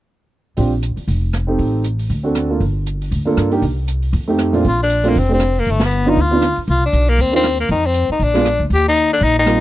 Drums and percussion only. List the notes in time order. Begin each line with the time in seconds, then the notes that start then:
0.57 open hi-hat
0.83 closed hi-hat
0.97 open hi-hat
1.08 open hi-hat
1.33 cross-stick, closed hi-hat
1.59 open hi-hat
1.84 closed hi-hat
1.99 open hi-hat
2.10 open hi-hat
2.35 cross-stick, closed hi-hat
2.61 open hi-hat
2.86 closed hi-hat
3.02 open hi-hat
3.12 open hi-hat
3.37 cross-stick, closed hi-hat
3.52 open hi-hat
3.62 open hi-hat
3.88 closed hi-hat
4.02 open hi-hat
4.13 open hi-hat
4.39 cross-stick, closed hi-hat
4.54 open hi-hat
4.64 open hi-hat
4.90 closed hi-hat
5.04 open hi-hat
5.15 open hi-hat
5.40 cross-stick, closed hi-hat
5.55 open hi-hat
5.65 open hi-hat
5.80 snare
5.91 closed hi-hat
6.16 open hi-hat
6.42 cross-stick, closed hi-hat
6.56 open hi-hat
6.67 open hi-hat
6.93 closed hi-hat
7.08 open hi-hat
7.19 open hi-hat
7.44 cross-stick, closed hi-hat
7.58 open hi-hat
7.69 open hi-hat
7.94 closed hi-hat
8.20 open hi-hat
8.34 snare
8.45 cross-stick, closed hi-hat
8.70 open hi-hat
8.96 closed hi-hat
9.21 open hi-hat
9.47 cross-stick, closed hi-hat